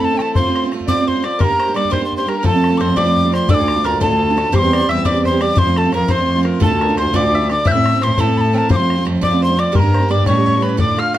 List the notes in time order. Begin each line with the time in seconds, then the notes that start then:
Already playing: A3 C4 E4 A4
0.00 B5, bodhran
0.05 A5
0.11 A3 C4 E4
0.17 E3 A3 C4 G5, bodhran
0.22 E4 A5
0.35 F3 A3 C4 F4 C5 C6, bodhran
0.46 A3 C4 F4
0.56 C5, bodhran
0.63 A3 C4 F4
0.71 F3 A3 C4 F4, bodhran
0.81 bodhran
0.87 F3 A3 C4 F4 D5 D6, bodhran
0.98 A3 C4 F4
1.07 C5 C6, bodhran
1.15 A3 C4 F4
1.22 F3 A3 C4 F4 D5 D6, bodhran
1.39 G3 A#3 D4 G4 A#4 C6, bodhran
1.44 A#5
1.49 A#3 D4 G4
1.59 C5, bodhran
1.66 A#3 D4 G4
1.74 G3 A#3 D4 G4 D5 D6, bodhran
1.85 bodhran
1.90 G3 A#3 D4 G4 C5 C6, bodhran
1.99 A#3 D4 G4
2.05 C6
2.12 bodhran
2.17 A#3 D4 G4 C5 C6
2.26 G3 A#3 D4 G4 A#4 A#5, bodhran
2.38 A#4
2.43 F2 F3 A3 C4 F4 A4 A5, bodhran
2.52 A3 C4 F4
2.64 bodhran
2.70 A3 C4 F4
2.78 F2 F3 C4 F4 C5 C6 D6, bodhran
2.82 A3
2.89 bodhran
2.96 F2 F3 A3 C4 F4 D5 D6, bodhran
3.05 A3 C4 F4
3.17 bodhran
3.24 A3 C4 F4
3.32 F3 A3 C4 F4 C5 C6, bodhran
3.48 D2 A2 D3 A3 D4 F4 D5 E6, bodhran
3.54 D6
3.59 D3 A3 D4 F4
3.68 bodhran
3.75 D3 A3 D4 F4
3.84 D2 D3 A3 D4 F4 A#4 A#5, bodhran
3.93 bodhran
4.00 D2 A2 D3 A3 D4 F4 A4 A5, bodhran
4.10 D3 A3 D4 F4
4.22 bodhran
4.28 D3 A3 D4 F4
4.37 D3 A3 D4 F4, bodhran
4.52 E2 E3 G3 C4 G4 C5 D6, bodhran
4.59 G4 C6
4.64 G3 C4
4.73 D5, bodhran
4.80 G3 C4 G4
4.89 E2 E3 G3 C4 G4 E5 E6, bodhran
4.97 bodhran
5.05 E2 E3 G3 C4 G4 D5 D6, bodhran
5.14 G3 C4 G4
5.25 C5 C6, bodhran
5.31 G3 C4 G4
5.40 E3 G3 C4 G4 D5 D6, bodhran
5.56 F2 F3 A3 C4 F4 C5 C6, bodhran
5.65 A3 C4 F4
5.76 A4 A5, bodhran
5.84 A3 C4 F4
5.92 F2 F3 A3 C4 F4 A#4 A#5, bodhran
6.01 bodhran
6.08 F2 F3 A3 C4 F4 C5 C6, bodhran
6.18 A3 C4 F4
6.28 bodhran
6.36 A3 C4 F4
6.43 F3 A3 C4 F4 A#4, bodhran
6.60 D2 A2 D3 A3 D4 F4 A4 A5, bodhran
6.70 D3 A3 D4 F4
6.81 A#4, bodhran
6.88 D3 A3 D4 F4
6.97 D2 D3 A3 D4 F4 C5 C6, bodhran
7.05 bodhran
7.13 D2 A2 D3 A3 D4 F4 D5 D6, bodhran
7.23 D3 A3 D4 F4
7.33 E5, bodhran
7.41 D3 A3 D4 F4
7.49 D3 A3 D4 F4 D5 D6, bodhran
7.65 A2 E3 A3 C4 E4 E5 G6, bodhran
7.72 A3 C4 E4 E6
7.86 bodhran
7.93 A3 C4 E4
8.01 A2 E3 A3 C4 E4 C5 C6, bodhran
8.10 bodhran
8.18 A2 E3 A3 C4 E4 A4 A5, bodhran
8.27 A3 C4 E4
8.37 A5 B5, bodhran
8.45 A3 C4 E4
8.53 E3 A3 C4 E4 A#4 G5
8.58 A5
8.69 F2 F3 A3 C4 F4 C5 D6, bodhran
8.76 A3 C4 F4 C6
8.90 bodhran
8.96 A3 C4 F4
9.05 F2 F3 A3 C4 F4, bodhran
9.15 bodhran
9.21 F2 F3 A3 C4 F4 D5 D6, bodhran
9.31 A3 C4 F4
9.42 C5 C6
9.49 A3 C4 F4
9.56 F3 A3 C4 F4 D5 D6, bodhran
9.72 G2 G3 A#3 D4 G4 A#4 C6, bodhran
9.79 D4 G4 A#5
9.84 A#3
9.94 C5, bodhran
10.00 A#3 D4 G4
10.08 G2 G3 A#3 D4 G4 D5 D6
10.19 bodhran
10.26 A2 E3 G3 C#4 G4 C#5 C#6, bodhran
10.35 G3 C#4 G4
10.46 C#5, bodhran
10.53 G3 C#4 G4
10.57 E3 G3 C#5
10.62 C#4 G4 B4 B5, bodhran
10.69 C#5
10.77 D2 A2 D3 A3 D4 F4 D5 D6, bodhran
10.96 D3 A3 D4 F4 F5 F6, bodhran
11.13 D3 A3 D4 F4 F5, bodhran